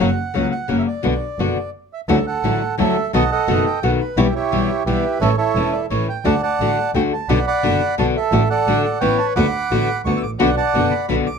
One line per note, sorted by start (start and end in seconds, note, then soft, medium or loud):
0.00 0.15 F#1 medium
0.00 0.15 A#3 medium
0.00 0.15 C#4 medium
0.00 0.10 C#4 medium
0.00 0.15 F#4 medium
0.00 0.10 F#4 medium
0.00 0.48 F#5 medium
0.34 0.50 C#2 medium
0.34 0.52 C#3 medium
0.34 0.52 F#3 medium
0.34 0.52 A#3 medium
0.34 0.50 A#3 soft
0.34 0.50 C#4 soft
0.34 0.52 C#4 medium
0.34 0.52 F#4 medium
0.34 0.50 F#4 soft
0.52 0.76 F#5 medium
0.68 0.85 F#1 medium
0.68 0.86 C#3 medium
0.68 0.86 F#3 medium
0.68 0.87 A#3 medium
0.68 0.84 A#3 soft
0.68 0.86 C#4 medium
0.68 0.84 C#4 soft
0.68 0.86 F#4 medium
0.68 0.84 F#4 soft
0.79 0.83 E5 medium
0.88 1.70 D5 medium
1.03 1.19 B1 medium
1.03 1.13 B2 medium
1.03 1.13 D3 medium
1.03 1.13 B3 medium
1.03 1.19 B3 medium
1.03 1.13 D4 medium
1.03 1.19 D4 medium
1.03 1.13 F#4 medium
1.03 1.19 F#4 medium
1.39 1.54 F#1 soft
1.39 1.56 B2 soft
1.39 1.56 D3 soft
1.39 1.54 B3 soft
1.39 1.57 B3 medium
1.39 1.54 D4 soft
1.39 1.57 D4 medium
1.39 1.54 F#4 soft
1.39 1.57 F#4 medium
1.93 2.01 E5 medium
2.08 2.23 D2 medium
2.08 2.18 D3 medium
2.08 2.18 F#3 medium
2.08 2.18 A3 medium
2.08 2.18 E4 medium
2.08 2.18 F#4 medium
2.08 2.26 A4 medium
2.08 2.17 F#5 medium
2.27 2.75 A4 medium
2.27 2.75 F#5 medium
2.43 2.58 A1 medium
2.43 2.61 D3 medium
2.43 2.61 F#3 medium
2.43 2.61 A3 medium
2.43 2.61 E4 medium
2.43 2.61 F#4 medium
2.78 2.93 D2 medium
2.78 2.95 D3 medium
2.78 2.96 F#3 medium
2.78 2.95 A3 medium
2.78 2.95 E4 medium
2.78 2.96 F#4 medium
2.78 3.12 A4 medium
2.78 3.11 E5 medium
3.13 3.28 B1 medium
3.13 3.22 B2 medium
3.13 3.23 D#3 medium
3.13 3.23 A3 medium
3.13 3.23 B3 medium
3.13 3.23 F#4 medium
3.13 3.30 D#5 medium
3.13 3.30 F#5 medium
3.13 3.31 A5 medium
3.31 3.80 A4 medium
3.31 3.79 D#5 medium
3.31 3.63 F#5 medium
3.48 3.63 F#1 medium
3.48 3.65 B2 medium
3.48 3.65 D#3 medium
3.48 3.65 A3 medium
3.48 3.65 B3 medium
3.48 3.65 F#4 medium
3.66 3.84 G5 medium
3.83 3.97 B1 medium
3.83 4.00 B2 medium
3.83 4.00 D#3 medium
3.83 4.00 A3 medium
3.83 4.00 B3 medium
3.83 4.00 F#4 medium
3.83 3.91 F#5 medium
4.00 4.18 B4 medium
4.17 4.32 B1 medium
4.17 4.26 B2 medium
4.17 4.26 E3 medium
4.17 4.26 G3 medium
4.17 4.26 B3 medium
4.17 4.26 E4 medium
4.17 4.34 E4 medium
4.17 4.34 G4 medium
4.17 4.25 C#5 medium
4.35 4.83 E4 medium
4.35 4.83 G4 medium
4.35 4.83 C#5 medium
4.52 4.66 B1 medium
4.52 4.69 B2 medium
4.52 4.69 E3 medium
4.52 4.69 G3 medium
4.52 4.69 B3 medium
4.52 4.69 E4 medium
4.86 5.00 B1 medium
4.86 5.04 B2 medium
4.86 5.04 E3 medium
4.86 5.04 G3 medium
4.86 5.04 B3 medium
4.86 5.18 E4 medium
4.86 5.04 E4 medium
4.86 5.18 G4 medium
4.86 5.22 B4 medium
5.21 5.35 A1 medium
5.21 5.30 E3 medium
5.21 5.31 A3 medium
5.21 5.31 C#4 medium
5.21 5.31 E4 medium
5.21 5.36 A4 medium
5.21 5.36 C#5 medium
5.21 5.29 E5 medium
5.37 5.86 E4 medium
5.37 5.86 A4 medium
5.37 5.73 C#5 medium
5.55 5.70 E1 medium
5.55 5.73 E3 medium
5.55 5.73 A3 medium
5.55 5.73 C#4 medium
5.55 5.73 E4 medium
5.73 5.80 D5 medium
5.90 6.05 A1 medium
5.90 6.07 E3 medium
5.90 6.08 A3 medium
5.90 6.08 C#4 medium
5.90 6.08 E4 medium
5.90 6.06 C#5 medium
6.09 6.26 G5 medium
6.25 6.40 D2 medium
6.25 6.34 D3 medium
6.25 6.34 A3 medium
6.25 6.34 D4 medium
6.25 6.34 F#4 medium
6.25 6.42 D5 medium
6.25 6.41 F#5 medium
6.25 6.41 A5 medium
6.43 6.91 D5 medium
6.43 6.91 F#5 medium
6.43 6.91 A5 medium
6.60 6.74 A1 medium
6.60 6.77 D3 medium
6.60 6.77 A3 medium
6.60 6.78 D4 medium
6.60 6.78 F#4 medium
6.94 7.09 D2 medium
6.94 7.11 D3 medium
6.94 7.11 A3 medium
6.94 7.12 D4 medium
6.94 7.12 F#4 medium
6.94 7.02 G5 medium
7.13 7.28 A5 medium
7.29 7.43 B1 medium
7.29 7.38 B2 medium
7.29 7.38 D3 medium
7.29 7.38 B3 medium
7.29 7.38 D4 medium
7.29 7.38 F#4 medium
7.29 7.46 D5 medium
7.29 7.45 F#5 medium
7.29 7.46 B5 medium
7.47 7.95 D5 medium
7.47 7.95 F#5 medium
7.47 7.95 B5 loud
7.63 7.78 F#1 medium
7.63 7.80 B2 medium
7.63 7.80 D3 medium
7.63 7.80 B3 medium
7.63 7.81 D4 medium
7.63 7.81 F#4 medium
7.98 8.13 B1 medium
7.98 8.15 B2 medium
7.98 8.15 D3 medium
7.98 8.15 B3 medium
7.98 8.16 D4 medium
7.98 8.16 F#4 medium
7.98 8.06 A5 medium
8.17 8.49 A4 medium
8.17 8.48 E5 medium
8.32 8.47 A1 medium
8.32 8.41 D3 medium
8.32 8.42 A3 medium
8.32 8.41 D4 medium
8.32 8.42 F#4 medium
8.50 8.98 A4 medium
8.50 8.99 D5 medium
8.50 8.82 F#5 medium
8.67 8.82 A1 medium
8.67 8.84 D3 medium
8.67 8.85 A3 medium
8.67 8.85 D4 medium
8.67 8.85 F#4 medium
8.85 9.01 F#5 medium
9.00 9.16 A1 medium
9.00 9.19 E3 medium
9.00 9.19 B3 medium
9.00 9.19 C#4 medium
9.00 9.19 E4 medium
9.00 9.34 B4 medium
9.00 9.33 C#5 medium
9.00 9.17 G5 medium
9.18 9.26 A5 medium
9.36 9.51 D2 medium
9.36 9.45 D3 medium
9.36 9.46 A3 medium
9.36 9.46 B3 medium
9.36 9.46 F#4 medium
9.36 10.01 F#5 medium
9.36 10.02 B5 medium
9.36 10.01 D6 medium
9.71 9.86 A1 medium
9.71 9.88 D3 medium
9.71 9.88 A3 medium
9.71 9.88 B3 medium
9.71 9.88 F#4 medium
10.05 10.20 D2 medium
10.05 10.23 D3 medium
10.05 10.23 A3 medium
10.05 10.23 B3 medium
10.05 10.23 F#4 medium
10.05 10.19 C#6 medium
10.17 10.22 E6 medium
10.23 10.39 A1 soft
10.23 10.31 D6 medium
10.39 10.55 B1 medium
10.39 10.49 B2 medium
10.39 10.49 D3 medium
10.39 10.55 B3 medium
10.39 10.49 B3 medium
10.39 10.54 D4 medium
10.39 10.49 D4 medium
10.39 10.49 F#4 medium
10.39 10.55 F#4 medium
10.39 10.56 D5 medium
10.39 10.55 F#5 medium
10.39 10.48 B5 medium
10.57 11.06 D5 medium
10.57 11.06 F#5 medium
10.57 10.93 A5 medium
10.74 10.90 F#1 medium
10.74 10.92 B2 medium
10.74 10.92 D3 medium
10.74 10.89 B3 soft
10.74 10.92 B3 medium
10.74 10.90 D4 soft
10.74 10.92 D4 medium
10.74 10.89 F#4 medium
10.74 10.92 F#4 medium
10.91 11.06 B5 medium
11.08 11.24 B1 medium
11.08 11.26 B2 medium
11.08 11.27 D3 medium
11.08 11.24 B3 soft
11.08 11.26 B3 medium
11.08 11.24 D4 soft
11.08 11.27 D4 medium
11.08 11.24 F#4 medium
11.08 11.27 F#4 medium
11.08 11.16 B5 medium
11.26 11.39 B1 medium
11.26 11.39 D6 medium